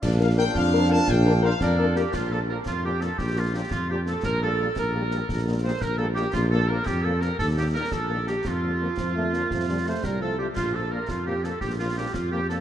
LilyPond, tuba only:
\new Staff \with { instrumentName = "Tuba" } { \clef bass \time 6/8 \key bes \major \tempo 4. = 114 bes,,4. f,4. | bes,,4. f,4. | bes,,4. f,4. | bes,,4. f,4. |
bes,,4. bes,,4. | bes,,4. bes,,4. | bes,,4. f,4. | ees,4. bes,,4. |
f,4. f,4. | f,4. c,4. | bes,,4. f,4. | bes,,4. f,4. | }